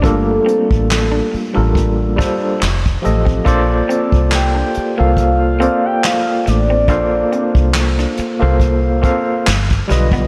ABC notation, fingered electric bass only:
X:1
M:4/4
L:1/16
Q:"Swing 16ths" 1/4=70
K:Bb
V:1 name="Fingered electric bass" clef=bass
G,,,2 z A,,,3 z A,,,4 z F,,,2 A,,,2 | B,,,2 z C,,3 z C,,4 z3 A,,,2 | B,,,2 z C,,3 z C,,4 z G,,,2 =B,,,2 |]